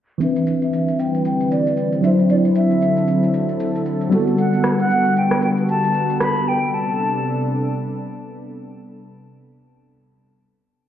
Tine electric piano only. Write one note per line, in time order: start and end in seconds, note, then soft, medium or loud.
0.18 1.98 E3 medium
0.18 1.99 C4 medium
0.22 2.00 D4 medium
0.22 2.01 B4 medium
2.01 4.07 F#3 medium
2.01 4.08 D4 medium
2.05 4.09 E4 medium
2.05 4.10 C5 medium
4.09 6.15 G3 medium
4.09 6.16 B3 medium
4.14 6.17 F#4 medium
4.14 6.18 A4 medium